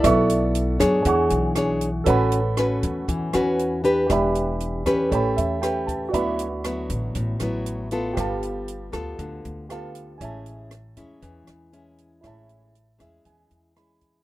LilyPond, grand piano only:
\new Staff \with { instrumentName = "Grand piano" } { \time 4/4 \key a \major \tempo 4 = 118 << { r1 | r1 | r2 r8 e''8 g''8 a''8 | r1 |
r2. f''4 | r1 | r4. e''8 gis''4 b''4 | } \\ { <a' d'' e'' cis'''>2 <gis' fis'' cis'''>2 | <a' cis'' fis'' b''>1 | <g' d'' e'' b''>2 <a' cis'' g'' b''>2 | <fis' d'' e'' b''>1 |
<g' b' f'' a''>2. <g' b' a''>4 | <cis'' e'' gis'' a''>1 | <e' cis'' e'' a''>1 | } >> }